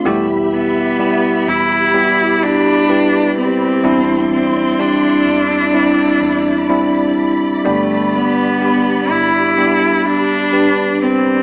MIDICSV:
0, 0, Header, 1, 5, 480
1, 0, Start_track
1, 0, Key_signature, 0, "major"
1, 0, Tempo, 947867
1, 27, Time_signature, 4, 2, 24, 8
1, 2907, Tempo, 956938
1, 5759, End_track
2, 0, Start_track
2, 0, Title_t, "String section"
2, 0, Program_c, 0, 48
2, 29, Note_on_c, 0, 83, 87
2, 30, Note_on_c, 0, 67, 78
2, 30, Note_on_c, 0, 76, 68
2, 975, Note_off_c, 0, 76, 0
2, 984, Note_on_c, 0, 74, 67
2, 1925, Note_off_c, 0, 67, 0
2, 1925, Note_off_c, 0, 83, 0
2, 1944, Note_on_c, 0, 84, 84
2, 1945, Note_on_c, 0, 64, 81
2, 2896, Note_off_c, 0, 84, 0
2, 2907, Note_on_c, 0, 83, 85
2, 3853, Note_off_c, 0, 64, 0
2, 3868, Note_on_c, 0, 67, 67
2, 5759, Note_off_c, 0, 67, 0
2, 5759, Note_off_c, 0, 74, 0
2, 5759, Note_off_c, 0, 83, 0
2, 5759, End_track
3, 0, Start_track
3, 0, Title_t, "Tine electric piano"
3, 0, Program_c, 1, 4
3, 0, Control_c, 1, 64, 127
3, 26, Note_on_c, 1, 55, 90
3, 28, Note_on_c, 1, 59, 87
3, 29, Note_on_c, 1, 64, 93
3, 30, Note_on_c, 1, 47, 73
3, 33, Note_on_c, 1, 67, 110
3, 34, Control_c, 1, 64, 0
3, 124, Control_c, 1, 64, 127
3, 480, Note_off_c, 1, 55, 0
3, 481, Note_off_c, 1, 59, 0
3, 481, Note_off_c, 1, 64, 0
3, 483, Note_off_c, 1, 67, 0
3, 502, Note_on_c, 1, 55, 70
3, 505, Note_on_c, 1, 59, 66
3, 507, Note_on_c, 1, 64, 66
3, 508, Note_on_c, 1, 67, 73
3, 725, Note_off_c, 1, 47, 0
3, 958, Note_off_c, 1, 55, 0
3, 959, Note_off_c, 1, 59, 0
3, 960, Note_off_c, 1, 64, 0
3, 961, Note_off_c, 1, 67, 0
3, 981, Note_on_c, 1, 55, 70
3, 983, Note_on_c, 1, 59, 67
3, 985, Note_on_c, 1, 64, 65
3, 987, Note_on_c, 1, 67, 79
3, 1437, Note_off_c, 1, 55, 0
3, 1438, Note_off_c, 1, 59, 0
3, 1439, Note_off_c, 1, 64, 0
3, 1441, Note_off_c, 1, 67, 0
3, 1464, Note_on_c, 1, 55, 76
3, 1465, Note_on_c, 1, 71, 72
3, 1466, Note_on_c, 1, 64, 71
3, 1469, Note_on_c, 1, 67, 78
3, 1920, Note_off_c, 1, 55, 0
3, 1920, Note_off_c, 1, 71, 0
3, 1921, Note_off_c, 1, 64, 0
3, 1922, Note_off_c, 1, 67, 0
3, 1945, Note_on_c, 1, 55, 95
3, 1945, Note_on_c, 1, 60, 93
3, 1946, Note_on_c, 1, 52, 62
3, 1946, Note_on_c, 1, 62, 90
3, 1947, Note_on_c, 1, 64, 104
3, 1950, Control_c, 1, 64, 0
3, 2053, Control_c, 1, 64, 127
3, 2401, Note_off_c, 1, 55, 0
3, 2401, Note_off_c, 1, 60, 0
3, 2402, Note_off_c, 1, 62, 0
3, 2402, Note_off_c, 1, 64, 0
3, 2425, Note_on_c, 1, 55, 69
3, 2427, Note_on_c, 1, 62, 60
3, 2428, Note_on_c, 1, 60, 59
3, 2429, Note_on_c, 1, 67, 75
3, 2646, Note_off_c, 1, 52, 0
3, 2882, Note_off_c, 1, 55, 0
3, 2883, Note_off_c, 1, 60, 0
3, 2883, Note_off_c, 1, 62, 0
3, 2884, Note_off_c, 1, 67, 0
3, 2905, Note_on_c, 1, 55, 66
3, 2907, Note_on_c, 1, 60, 68
3, 2909, Note_on_c, 1, 62, 66
3, 2912, Note_on_c, 1, 64, 74
3, 3364, Note_off_c, 1, 55, 0
3, 3364, Note_off_c, 1, 60, 0
3, 3365, Note_off_c, 1, 62, 0
3, 3367, Note_off_c, 1, 64, 0
3, 3384, Note_on_c, 1, 55, 79
3, 3386, Note_on_c, 1, 60, 71
3, 3387, Note_on_c, 1, 62, 75
3, 3389, Note_on_c, 1, 64, 91
3, 3846, Note_off_c, 1, 55, 0
3, 3847, Note_off_c, 1, 60, 0
3, 3847, Note_off_c, 1, 62, 0
3, 3848, Note_off_c, 1, 64, 0
3, 3863, Note_on_c, 1, 55, 98
3, 3866, Note_on_c, 1, 43, 61
3, 3867, Note_on_c, 1, 50, 62
3, 3867, Note_on_c, 1, 59, 75
3, 3868, Note_on_c, 1, 67, 97
3, 3869, Note_on_c, 1, 62, 88
3, 3878, Control_c, 1, 64, 0
3, 3957, Control_c, 1, 64, 127
3, 4323, Note_off_c, 1, 55, 0
3, 4325, Note_off_c, 1, 59, 0
3, 4326, Note_off_c, 1, 62, 0
3, 4326, Note_off_c, 1, 67, 0
3, 4346, Note_on_c, 1, 55, 60
3, 4347, Note_on_c, 1, 59, 54
3, 4347, Note_on_c, 1, 62, 59
3, 4350, Note_on_c, 1, 67, 63
3, 4568, Note_off_c, 1, 43, 0
3, 4569, Note_off_c, 1, 50, 0
3, 4804, Note_off_c, 1, 55, 0
3, 4805, Note_off_c, 1, 59, 0
3, 4805, Note_off_c, 1, 62, 0
3, 4806, Note_off_c, 1, 67, 0
3, 4830, Note_on_c, 1, 55, 70
3, 4834, Note_on_c, 1, 59, 63
3, 4836, Note_on_c, 1, 62, 67
3, 4836, Note_on_c, 1, 67, 78
3, 5284, Note_off_c, 1, 55, 0
3, 5286, Note_off_c, 1, 59, 0
3, 5287, Note_off_c, 1, 62, 0
3, 5287, Note_off_c, 1, 67, 0
3, 5307, Note_on_c, 1, 55, 68
3, 5309, Note_on_c, 1, 62, 61
3, 5309, Note_on_c, 1, 71, 69
3, 5310, Note_on_c, 1, 67, 74
3, 5759, Note_off_c, 1, 55, 0
3, 5759, Note_off_c, 1, 62, 0
3, 5759, Note_off_c, 1, 67, 0
3, 5759, Note_off_c, 1, 71, 0
3, 5759, End_track
4, 0, Start_track
4, 0, Title_t, "Cello"
4, 0, Program_c, 2, 42
4, 30, Note_on_c, 2, 57, 94
4, 131, Note_off_c, 2, 57, 0
4, 266, Note_on_c, 2, 59, 102
4, 746, Note_on_c, 2, 64, 103
4, 753, Note_off_c, 2, 59, 0
4, 1228, Note_on_c, 2, 62, 103
4, 1236, Note_off_c, 2, 64, 0
4, 1705, Note_off_c, 2, 62, 0
4, 1711, Note_on_c, 2, 60, 97
4, 2167, Note_off_c, 2, 60, 0
4, 2190, Note_on_c, 2, 60, 85
4, 2431, Note_on_c, 2, 62, 95
4, 2438, Note_off_c, 2, 60, 0
4, 3634, Note_off_c, 2, 62, 0
4, 3873, Note_on_c, 2, 57, 90
4, 4118, Note_on_c, 2, 59, 101
4, 4126, Note_off_c, 2, 57, 0
4, 4595, Note_on_c, 2, 64, 92
4, 4602, Note_off_c, 2, 59, 0
4, 5071, Note_on_c, 2, 62, 100
4, 5079, Note_off_c, 2, 64, 0
4, 5547, Note_off_c, 2, 62, 0
4, 5552, Note_on_c, 2, 60, 98
4, 5759, Note_off_c, 2, 60, 0
4, 5759, End_track
5, 0, Start_track
5, 0, Title_t, "Fingered electric bass"
5, 0, Program_c, 3, 33
5, 26, Note_on_c, 3, 40, 113
5, 603, Note_off_c, 3, 40, 0
5, 744, Note_on_c, 3, 40, 80
5, 1923, Note_off_c, 3, 40, 0
5, 1942, Note_on_c, 3, 40, 104
5, 2644, Note_off_c, 3, 40, 0
5, 2662, Note_on_c, 3, 40, 103
5, 3125, Note_off_c, 3, 40, 0
5, 3143, Note_on_c, 3, 40, 87
5, 3868, Note_on_c, 3, 31, 97
5, 3875, Note_off_c, 3, 40, 0
5, 4569, Note_off_c, 3, 31, 0
5, 4591, Note_on_c, 3, 31, 91
5, 5759, Note_off_c, 3, 31, 0
5, 5759, End_track
0, 0, End_of_file